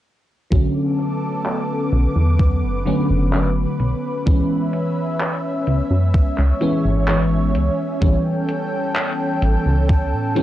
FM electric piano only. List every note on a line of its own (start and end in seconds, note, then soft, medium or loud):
0.50 2.80 D3 medium
0.50 2.81 F#3 medium
0.50 2.81 A3 medium
0.50 2.82 C#4 medium
2.85 3.08 D3 medium
2.85 3.09 F#3 medium
2.85 3.09 A3 medium
2.85 3.09 C#4 loud
3.33 4.21 D3 medium
3.33 4.21 F#3 medium
3.33 4.22 A3 medium
3.33 4.22 C#4 medium
4.26 6.55 E3 medium
4.26 6.56 G#3 medium
4.26 6.56 B3 medium
4.26 6.57 C#4 medium
6.60 6.83 E3 medium
6.60 6.84 G#3 medium
6.60 6.84 B3 medium
6.60 6.84 C#4 loud
7.07 7.96 E3 medium
7.07 7.96 G#3 medium
7.07 7.97 B3 medium
7.07 7.97 C#4 medium
8.01 10.30 E3 medium
8.01 10.31 G3 medium
8.01 10.31 B3 medium
8.01 10.32 C#4 medium
10.35 10.43 E3 medium
10.35 10.43 G3 medium
10.35 10.43 B3 medium
10.35 10.43 C#4 loud